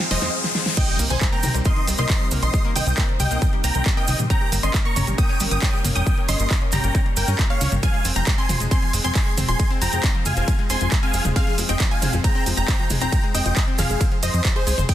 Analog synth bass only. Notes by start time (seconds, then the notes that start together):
0.11 F1
0.22 F2
0.99 C2
1.10 C2
1.43 C2
1.55 C2
1.88 C2
1.99 C2
2.32 C2
2.43 A#1
2.76 C2
2.87 C2
3.20 C2
3.31 C2
3.64 C2
3.75 C2
4.08 C2
4.19 A#1
4.52 G1
4.63 G1
4.96 G1
5.07 G1
5.40 G1
5.52 G1
5.85 G1
5.96 F1
6.29 G1
6.40 G1
6.73 G1
6.84 G1
7.17 G1
7.28 G2
7.61 C#2
7.72 G1
8.05 F1
8.16 F1
8.49 F1
8.60 F1
8.93 F1
9.05 F1
9.38 F1
9.49 D#1
9.82 F1
9.93 F1
10.26 F1
10.37 F1
10.70 F1
10.81 F1
11.14 F1
11.25 D#1
11.58 F1
11.69 F1
12.02 F1
12.13 F1
12.46 F1
12.57 F1
12.90 F1
13.02 D#1
13.35 F1
13.46 F1
13.79 F1
13.90 F1
14.23 F1
14.34 F2
14.67 C2
14.78 F1